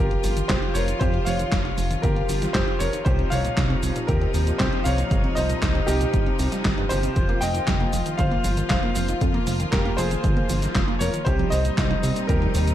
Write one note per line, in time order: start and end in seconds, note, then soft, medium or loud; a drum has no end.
0.00 0.17 G1 loud
0.00 9.17 C3 medium
0.00 11.22 F3 medium
0.00 3.02 F4 medium
0.00 0.46 G4 medium
0.00 0.50 A#4 medium
0.11 0.23 F4 medium
0.11 closed hi-hat soft
0.24 0.42 G1 medium
0.24 0.32 F3 medium
0.24 open hi-hat loud
0.24 cabasa medium
0.37 0.41 D#3 medium
0.37 closed hi-hat medium
0.37 cabasa soft
0.48 0.59 F1 loud
0.48 0.57 F3 medium
0.48 0.74 G4 medium
0.48 0.75 C5 loud
0.48 kick loud
0.48 snare loud
0.48 clap loud
0.48 closed hi-hat medium
0.48 cabasa soft
0.62 0.74 F4 medium
0.62 closed hi-hat soft
0.74 0.93 F1 loud
0.74 0.83 F3 medium
0.74 1.00 A#4 medium
0.74 1.01 C#5 medium
0.74 open hi-hat medium
0.74 cabasa medium
0.88 0.93 D#3 medium
0.88 closed hi-hat medium
0.88 cabasa soft
0.99 1.19 F2 loud
0.99 1.09 F3 medium
0.99 1.25 G4 medium
0.99 1.27 C5 loud
0.99 kick loud
0.99 closed hi-hat medium
0.99 cabasa soft
1.14 1.25 F4 medium
1.14 closed hi-hat soft
1.25 1.45 F1 medium
1.25 1.34 F3 medium
1.25 2.00 C#5 medium
1.25 2.05 F5 loud
1.25 open hi-hat loud
1.25 cabasa medium
1.39 1.44 D#3 medium
1.39 closed hi-hat medium
1.39 cabasa soft
1.52 1.70 F1 medium
1.52 1.60 F3 medium
1.52 kick loud
1.52 snare loud
1.52 clap loud
1.52 closed hi-hat medium
1.52 cabasa soft
1.65 1.77 F4 medium
1.65 closed hi-hat soft
1.78 1.96 F1 loud
1.78 1.86 F3 medium
1.78 open hi-hat medium
1.78 cabasa medium
1.90 1.95 D#3 medium
1.90 closed hi-hat medium
1.90 cabasa soft
2.02 2.22 G1 loud
2.02 2.11 F3 medium
2.02 2.52 G4 medium
2.02 2.55 A#4 medium
2.02 kick loud
2.02 closed hi-hat medium
2.02 cabasa soft
2.16 2.28 F4 medium
2.16 closed hi-hat soft
2.29 2.47 G1 medium
2.29 2.37 F3 medium
2.29 open hi-hat loud
2.29 cabasa medium
2.42 2.46 D#3 medium
2.42 snare soft
2.42 closed hi-hat medium
2.42 cabasa soft
2.53 2.64 F1 loud
2.53 2.62 F3 medium
2.53 2.79 G4 medium
2.53 2.80 C5 loud
2.53 kick loud
2.53 snare loud
2.53 clap loud
2.53 closed hi-hat medium
2.53 cabasa soft
2.67 2.79 F4 medium
2.67 closed hi-hat soft
2.79 2.90 F1 loud
2.79 2.88 F3 medium
2.79 3.05 A#4 medium
2.79 3.06 C#5 medium
2.79 open hi-hat medium
2.79 cabasa medium
2.93 2.98 D#3 medium
2.93 closed hi-hat medium
2.93 cabasa soft
3.05 3.24 C2 loud
3.05 3.14 C3 medium
3.05 7.12 D#4 medium
3.05 3.30 G4 medium
3.05 3.32 C5 loud
3.05 kick loud
3.05 closed hi-hat medium
3.05 cabasa soft
3.19 3.30 C4 medium
3.19 closed hi-hat soft
3.30 3.50 C2 loud
3.30 3.39 C3 medium
3.30 4.05 C#5 medium
3.30 4.10 F5 loud
3.30 open hi-hat loud
3.30 cabasa medium
3.44 3.49 A#2 medium
3.44 closed hi-hat medium
3.44 cabasa soft
3.57 3.76 C2 loud
3.57 3.65 C3 medium
3.57 kick loud
3.57 snare loud
3.57 clap loud
3.57 closed hi-hat medium
3.57 cabasa soft
3.70 3.82 C4 medium
3.70 closed hi-hat soft
3.83 3.92 C2 medium
3.83 3.91 C3 medium
3.83 open hi-hat medium
3.83 cabasa medium
3.96 4.00 A#2 medium
3.96 closed hi-hat medium
3.96 cabasa soft
4.07 4.27 D#2 loud
4.07 4.16 C3 medium
4.07 4.57 G4 medium
4.07 4.61 A#4 medium
4.07 kick loud
4.07 closed hi-hat medium
4.07 cabasa soft
4.21 4.33 C4 medium
4.21 closed hi-hat soft
4.34 4.52 D#2 loud
4.34 4.42 C3 medium
4.34 open hi-hat loud
4.34 cabasa medium
4.47 4.52 A#2 medium
4.47 closed hi-hat medium
4.47 cabasa soft
4.58 4.69 C2 loud
4.58 4.68 C3 medium
4.58 4.84 G4 medium
4.58 4.85 C5 loud
4.58 kick loud
4.58 snare loud
4.58 clap loud
4.58 closed hi-hat medium
4.58 cabasa soft
4.73 4.84 C4 medium
4.73 closed hi-hat soft
4.84 5.04 C2 loud
4.84 4.93 C3 medium
4.84 5.34 C#5 medium
4.84 5.38 F5 loud
4.84 open hi-hat medium
4.84 cabasa medium
4.98 5.03 A#2 medium
4.98 closed hi-hat medium
4.98 cabasa soft
5.11 5.29 G1 loud
5.11 5.19 C3 medium
5.11 kick loud
5.11 closed hi-hat soft
5.11 cabasa soft
5.24 5.36 C4 medium
5.24 closed hi-hat soft
5.35 5.55 C2 medium
5.35 5.44 C3 medium
5.35 5.85 C5 medium
5.35 5.89 D#5 loud
5.35 open hi-hat loud
5.35 cabasa medium
5.49 5.54 A#2 medium
5.49 closed hi-hat soft
5.49 cabasa soft
5.62 5.81 C2 medium
5.62 5.70 C3 medium
5.62 kick loud
5.62 snare loud
5.62 clap loud
5.62 closed hi-hat soft
5.62 cabasa soft
5.75 5.87 C4 medium
5.75 closed hi-hat soft
5.87 6.06 C2 loud
5.87 5.96 C3 medium
5.87 6.87 D#4 medium
5.87 6.86 G4 loud
5.87 open hi-hat medium
5.87 cabasa medium
6.01 6.05 A#2 medium
6.01 closed hi-hat soft
6.01 cabasa soft
6.14 6.32 G1 medium
6.14 6.21 C3 medium
6.14 kick loud
6.14 closed hi-hat soft
6.14 cabasa soft
6.26 6.38 C4 medium
6.26 closed hi-hat soft
6.39 6.48 C2 loud
6.39 6.51 C3 medium
6.39 open hi-hat loud
6.39 cabasa medium
6.52 6.64 G3 medium
6.52 snare soft
6.52 closed hi-hat medium
6.52 cabasa soft
6.65 6.74 G1 medium
6.65 6.77 C4 medium
6.65 kick loud
6.65 snare loud
6.65 clap loud
6.65 closed hi-hat medium
6.65 cabasa soft
6.78 6.86 G2 loud
6.78 closed hi-hat soft
6.89 7.09 G1 medium
6.89 6.98 C3 medium
6.89 7.39 G4 medium
6.89 7.43 C5 loud
6.89 open hi-hat medium
6.89 cabasa medium
7.03 7.15 C3 medium
7.03 closed hi-hat soft
7.03 cabasa soft
7.16 7.34 F1 loud
7.16 7.24 F3 medium
7.16 11.22 F4 medium
7.16 kick loud
7.16 closed hi-hat soft
7.16 cabasa soft
7.29 7.41 A#3 loud
7.29 closed hi-hat soft
7.41 7.60 F1 medium
7.41 7.50 F3 medium
7.41 8.15 D#5 medium
7.41 8.21 G5 loud
7.41 open hi-hat loud
7.41 cabasa medium
7.55 7.59 D#3 medium
7.55 closed hi-hat soft
7.55 cabasa soft
7.67 7.86 F1 medium
7.67 7.75 F3 medium
7.67 kick loud
7.67 snare loud
7.67 clap loud
7.67 closed hi-hat medium
7.67 cabasa soft
7.80 7.92 A#3 loud
7.80 closed hi-hat soft
7.93 8.02 F1 medium
7.93 8.01 F3 medium
7.93 open hi-hat medium
7.93 cabasa medium
8.06 8.11 D#3 medium
8.06 closed hi-hat soft
8.06 cabasa soft
8.17 8.37 G1 loud
8.17 8.27 F3 medium
8.17 8.67 C5 medium
8.17 8.67 F5 loud
8.17 kick loud
8.17 closed hi-hat medium
8.17 cabasa soft
8.31 8.43 A#3 loud
8.31 closed hi-hat soft
8.44 8.63 G1 loud
8.44 8.52 F3 medium
8.44 open hi-hat loud
8.44 cabasa medium
8.57 8.62 D#3 medium
8.57 closed hi-hat medium
8.57 cabasa soft
8.69 8.79 F1 loud
8.69 8.78 F3 medium
8.69 9.06 C5 medium
8.69 9.05 F5 loud
8.69 kick loud
8.69 snare loud
8.69 clap loud
8.69 closed hi-hat medium
8.69 cabasa soft
8.83 8.95 A#3 loud
8.83 closed hi-hat soft
8.96 9.14 F1 loud
8.96 9.03 F3 medium
8.96 open hi-hat medium
8.96 cabasa medium
9.08 9.13 D#3 medium
9.08 closed hi-hat medium
9.08 cabasa soft
9.21 9.40 F2 loud
9.21 9.29 F3 medium
9.21 11.24 A#3 medium
9.21 kick loud
9.21 closed hi-hat medium
9.21 cabasa soft
9.34 9.46 A#3 loud
9.34 closed hi-hat soft
9.47 9.65 F1 medium
9.47 9.55 F3 medium
9.47 open hi-hat loud
9.47 cabasa medium
9.60 9.64 D#3 medium
9.60 closed hi-hat soft
9.60 cabasa soft
9.71 9.91 F1 medium
9.71 9.80 F3 medium
9.71 9.97 G4 medium
9.71 9.98 A#4 medium
9.71 kick loud
9.71 snare loud
9.71 clap medium
9.71 closed hi-hat medium
9.71 cabasa soft
9.85 9.97 A#3 loud
9.85 closed hi-hat soft
9.97 10.16 F1 loud
9.97 10.06 F3 medium
9.97 10.97 G#4 medium
9.97 11.03 C5 loud
9.97 open hi-hat medium
9.97 cabasa medium
10.11 10.16 D#3 medium
10.11 closed hi-hat medium
10.11 cabasa soft
10.24 10.42 G1 loud
10.24 10.32 F3 medium
10.24 kick loud
10.24 closed hi-hat medium
10.24 cabasa soft
10.37 10.48 A#3 loud
10.37 closed hi-hat soft
10.49 10.68 G1 medium
10.49 10.57 F3 medium
10.49 open hi-hat loud
10.49 cabasa medium
10.62 10.67 D#3 medium
10.62 snare soft
10.62 closed hi-hat medium
10.62 cabasa soft
10.75 10.84 F1 loud
10.75 10.83 F3 medium
10.75 kick loud
10.75 snare loud
10.75 clap loud
10.75 closed hi-hat medium
10.75 cabasa soft
10.88 11.00 A#3 loud
10.88 closed hi-hat soft
10.99 11.10 F1 loud
10.99 11.09 F3 medium
10.99 11.25 A#4 medium
10.99 11.26 C#5 loud
10.99 open hi-hat loud
10.99 cabasa medium
11.14 11.18 D#3 medium
11.14 closed hi-hat medium
11.14 cabasa soft
11.25 11.45 C2 loud
11.25 11.34 C3 medium
11.25 12.74 G3 medium
11.25 12.74 C4 medium
11.25 12.74 D#4 medium
11.25 11.51 G4 medium
11.25 11.49 C5 loud
11.25 kick loud
11.25 closed hi-hat medium
11.25 cabasa soft
11.39 11.51 F3 loud
11.39 closed hi-hat soft
11.50 11.70 C2 loud
11.50 11.60 C3 medium
11.50 12.25 C5 medium
11.50 12.30 D#5 loud
11.50 open hi-hat loud
11.50 cabasa medium
11.65 11.70 A#2 medium
11.65 closed hi-hat medium
11.65 cabasa soft
11.78 11.96 C2 medium
11.78 11.85 C3 medium
11.78 kick loud
11.78 snare loud
11.78 clap medium
11.78 closed hi-hat medium
11.78 cabasa soft
11.90 12.02 F3 loud
11.90 closed hi-hat soft
12.03 12.12 C2 medium
12.03 12.11 C3 medium
12.03 open hi-hat loud
12.03 cabasa medium
12.16 12.21 A#2 medium
12.16 closed hi-hat medium
12.16 cabasa soft
12.27 12.47 D#2 loud
12.27 12.37 C3 medium
12.27 12.74 G4 medium
12.27 12.74 A#4 medium
12.27 kick loud
12.27 closed hi-hat medium
12.27 cabasa soft
12.42 12.54 F3 loud
12.42 closed hi-hat soft
12.54 12.73 D#2 loud
12.54 12.62 C3 medium
12.54 open hi-hat loud
12.54 cabasa medium
12.67 12.72 A#2 medium
12.67 closed hi-hat medium
12.67 cabasa soft